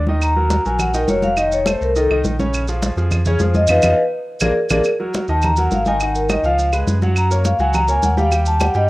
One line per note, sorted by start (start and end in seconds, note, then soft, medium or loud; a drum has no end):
0.00 0.59 D#2 loud
0.07 0.32 D#3 medium
0.07 0.32 D#4 medium
0.07 0.32 D#5 medium
0.07 high conga medium
0.21 0.63 A#5 loud
0.21 high conga soft
0.21 claves medium
0.21 maracas medium
0.36 0.60 F#3 medium
0.36 0.60 F#4 medium
0.36 0.60 A#4 medium
0.36 high conga soft
0.50 high conga loud
0.50 maracas medium
0.65 1.06 A#1 loud
0.65 0.89 F#3 medium
0.65 0.89 F#4 medium
0.65 0.90 A#4 medium
0.65 0.80 G#5 medium
0.65 high conga soft
0.65 maracas soft
0.79 0.94 F#5 loud
0.79 high conga soft
0.79 low conga medium
0.79 claves medium
0.79 maracas medium
0.93 1.06 D#3 medium
0.93 1.06 D#4 loud
0.93 1.08 A#4 medium
0.93 1.06 D#5 medium
0.93 high conga soft
0.93 maracas medium
1.08 1.76 F1 medium
1.08 1.33 F#3 medium
1.08 1.33 F#4 medium
1.08 1.33 A#4 medium
1.08 1.23 C#5 medium
1.08 high conga medium
1.08 maracas medium
1.22 1.37 F5 loud
1.22 high conga medium
1.22 maracas soft
1.37 1.61 D#3 medium
1.37 1.61 D#4 medium
1.37 1.61 D#5 medium
1.37 1.52 D#5 medium
1.37 high conga soft
1.37 claves medium
1.37 maracas medium
1.51 1.67 C#5 loud
1.51 high conga soft
1.51 maracas medium
1.66 1.90 A3 medium
1.66 1.90 A4 medium
1.66 1.90 C5 medium
1.66 1.81 C5 medium
1.66 high conga loud
1.66 claves medium
1.66 maracas medium
1.81 2.08 C2 loud
1.81 1.96 A#4 medium
1.81 maracas soft
1.96 2.08 D#3 medium
1.96 2.08 D#4 medium
1.96 2.06 A4 medium
1.96 2.08 D#5 medium
1.96 high conga soft
1.96 maracas medium
2.10 2.23 C2 medium
2.10 2.34 D#3 loud
2.10 2.34 D#4 medium
2.10 2.35 D#5 medium
2.10 high conga soft
2.10 claves medium
2.24 2.91 A#1 loud
2.24 high conga medium
2.24 maracas medium
2.39 2.63 C#3 medium
2.39 2.63 C#4 medium
2.39 2.63 C#5 loud
2.39 high conga medium
2.39 maracas soft
2.54 high conga soft
2.54 claves medium
2.54 maracas medium
2.68 2.92 F3 medium
2.68 2.92 F4 medium
2.68 2.92 G#4 medium
2.68 high conga soft
2.68 maracas medium
2.83 high conga loud
2.83 maracas medium
2.96 3.37 F2 medium
2.96 3.21 F3 medium
2.96 3.21 F4 medium
2.96 3.21 G#4 medium
2.96 high conga soft
2.96 maracas soft
3.11 high conga soft
3.11 low conga medium
3.11 claves medium
3.11 maracas medium
3.25 3.38 C#3 medium
3.25 3.38 C#4 loud
3.25 3.41 G#4 loud
3.25 3.39 C#5 loud
3.25 high conga soft
3.25 low conga medium
3.25 maracas medium
3.39 3.67 F2 loud
3.39 3.64 F3 medium
3.39 3.64 F4 medium
3.39 3.64 G#4 medium
3.39 3.55 C5 medium
3.39 high conga medium
3.39 maracas medium
3.54 3.68 D#5 loud
3.54 high conga medium
3.54 maracas soft
3.67 3.80 F2 loud
3.67 3.79 B3 loud
3.67 3.79 D#4 loud
3.67 3.79 F4 loud
3.67 3.79 B4 loud
3.67 3.79 D#5 loud
3.67 3.79 F5 loud
3.67 low conga medium
3.67 claves loud
3.67 maracas loud
3.82 3.94 F2 loud
3.82 3.93 B3 loud
3.82 3.93 D#4 loud
3.82 3.93 F4 loud
3.82 3.93 B4 loud
3.82 3.93 D#5 loud
3.82 3.93 F5 loud
3.82 low conga loud
3.82 claves loud
3.82 maracas loud
4.40 4.52 A#1 loud
4.40 4.51 A#3 loud
4.40 4.51 D4 loud
4.40 4.51 F4 loud
4.40 4.51 G#4 loud
4.40 4.51 A#4 loud
4.40 4.51 D5 loud
4.40 low conga loud
4.40 claves loud
4.40 maracas loud
4.70 4.81 A#1 medium
4.70 4.80 A#3 loud
4.70 4.80 D4 loud
4.70 4.80 F4 loud
4.70 4.80 G#4 loud
4.70 4.80 A#4 loud
4.70 4.80 D5 loud
4.70 low conga loud
4.70 claves loud
4.70 maracas loud
4.84 claves medium
4.84 maracas medium
5.00 5.23 F#3 medium
5.00 5.24 F#4 medium
5.00 5.24 A#4 medium
5.00 high conga soft
5.14 high conga loud
5.14 maracas medium
5.28 5.69 D#2 medium
5.28 5.52 D#3 medium
5.28 5.52 D#4 medium
5.28 5.53 D#5 medium
5.28 5.43 A5 loud
5.28 high conga soft
5.28 maracas soft
5.42 5.58 A#5 loud
5.42 high conga soft
5.42 low conga medium
5.42 claves medium
5.42 maracas medium
5.57 5.81 F#3 medium
5.57 5.81 F#4 medium
5.57 5.82 A#4 medium
5.57 5.72 F#5 loud
5.57 high conga soft
5.57 maracas medium
5.71 6.38 G#1 loud
5.71 5.86 F5 medium
5.71 high conga medium
5.71 maracas medium
5.85 5.99 D#3 loud
5.85 5.99 D#4 medium
5.85 5.99 D#5 medium
5.85 6.01 G#5 loud
5.85 high conga medium
5.85 maracas soft
6.00 6.25 D#3 medium
6.00 6.25 D#4 medium
6.00 6.26 D#5 medium
6.00 6.15 F#5 medium
6.00 claves medium
6.00 maracas medium
6.15 6.29 A#4 medium
6.15 high conga soft
6.15 maracas medium
6.29 6.42 D#3 medium
6.29 6.42 D#4 medium
6.29 6.42 D#5 medium
6.29 6.44 D#5 medium
6.29 high conga loud
6.29 claves medium
6.29 maracas medium
6.43 6.84 C#2 medium
6.43 6.68 F3 medium
6.43 6.68 F4 medium
6.43 6.71 F5 loud
6.43 6.69 F5 medium
6.43 maracas soft
6.59 high conga soft
6.59 maracas medium
6.73 6.96 G#3 medium
6.73 6.97 G#4 medium
6.73 6.97 B4 medium
6.73 high conga soft
6.73 claves medium
6.73 maracas medium
6.86 7.54 F#2 loud
6.86 high conga medium
6.86 maracas medium
7.02 7.26 F#3 loud
7.02 7.26 F#4 medium
7.02 7.26 F#5 medium
7.02 high conga medium
7.02 maracas soft
7.16 7.31 A#5 loud
7.16 high conga soft
7.16 claves medium
7.16 maracas medium
7.31 7.55 A#3 medium
7.31 7.54 A#4 medium
7.31 7.45 C#5 medium
7.31 7.55 C#5 medium
7.31 high conga soft
7.31 maracas medium
7.45 7.59 F5 medium
7.45 high conga loud
7.45 maracas medium
7.59 8.00 C#2 loud
7.59 7.84 F#3 loud
7.59 7.84 F#4 medium
7.59 7.84 F#5 medium
7.59 7.74 G#5 loud
7.59 high conga soft
7.59 maracas soft
7.73 7.88 A#5 loud
7.73 high conga soft
7.73 low conga medium
7.73 claves medium
7.73 maracas medium
7.88 8.12 A#3 medium
7.88 8.12 A#4 medium
7.88 8.13 C#5 medium
7.88 8.03 G#5 loud
7.88 high conga soft
7.88 maracas medium
8.02 8.69 D#2 loud
8.02 8.18 F#5 medium
8.02 high conga medium
8.02 maracas medium
8.17 8.29 G3 loud
8.17 8.29 G4 loud
8.17 8.32 F5 loud
8.17 8.30 G5 loud
8.17 high conga medium
8.17 maracas soft
8.31 8.56 G3 medium
8.31 8.56 G4 medium
8.31 8.56 G5 medium
8.31 8.47 G5 medium
8.31 high conga soft
8.31 claves medium
8.31 maracas medium
8.46 8.61 A5 loud
8.46 high conga soft
8.46 maracas medium
8.60 8.72 G3 medium
8.60 8.72 G4 medium
8.60 8.75 F#5 medium
8.60 8.73 G5 medium
8.60 high conga loud
8.60 claves medium
8.60 maracas medium
8.74 8.90 G2 medium
8.74 8.90 G3 loud
8.74 8.90 G4 medium
8.74 8.90 D#5 loud
8.74 8.90 G5 medium
8.74 maracas soft